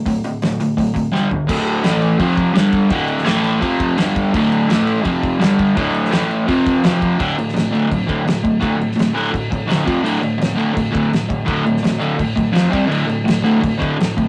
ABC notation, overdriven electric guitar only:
X:1
M:4/4
L:1/8
Q:1/4=168
K:Dm
V:1 name="Overdriven electric guitar" clef=bass
[D,,A,,] [D,,A,,] [D,,A,,] [D,,A,,] [D,,A,,] [D,,A,,] [G,,D,G,] [G,,D,] | [D,,A,,D,]2 [A,,E,A,]2 [F,,C,F,]2 [G,,D,G,]2 | [D,,A,,D,]2 [A,,E,A,]2 [F,,C,F,]2 [G,,D,G,]2 | [D,,A,,D,]2 [A,,E,A,]2 [F,,C,F,]2 [G,,D,G,]2 |
[D,,A,,D,]2 [A,,E,A,]2 [F,,C,F,]2 [F,,C,F,]2 | [D,,A,,D,] [D,,A,,] [D,,A,,] [D,,A,,D,] [D,,A,,] [D,,A,,D,] [D,,A,,] [D,,A,,] | [D,,A,,D,] [D,,A,,] [D,,A,,] [D,,A,,D,] [D,,A,,] [D,,A,,] [D,,A,,D,] [F,,C,F,] | [D,,A,,D,] [D,,A,,] [D,,A,,] [D,,A,,D,] [D,,A,,] [D,,A,,D,] [D,,A,,] [D,,A,,] |
[D,,A,,D,] [D,,A,,] [D,,A,,] [D,,A,,D,] [D,,A,,] [D,,A,,] [F,,C,F,] [C,G,C] | [D,,A,,D,] [D,,A,,] [D,,A,,] [D,,A,,D,] [D,,A,,] [D,,A,,D,] [D,,A,,] [D,,A,,] |]